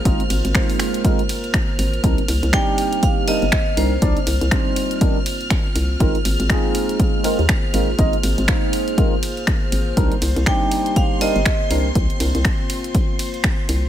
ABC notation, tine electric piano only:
X:1
M:4/4
L:1/8
Q:"Swing 16ths" 1/4=121
K:Cm
V:1 name="Tine electric piano"
[A,CEFe] z [A,CEFc]2 [A,CEFB] z3 | [G,CDEB] z [G,CDEG]3 [G,CDEB] z [G,CDEB] | [G,CDEd] z [G,CDEc]2 [G,CDEB] z3 | [A,CEFB] z [A,CEFA]3 [A,CEFB] z [A,CEFB] |
[A,CEFe] z [A,CEFc]2 [A,CEFB] z3 | [G,CDEB] z [G,CDEG]3 [G,CDEB] z [G,CDEB] | z8 |]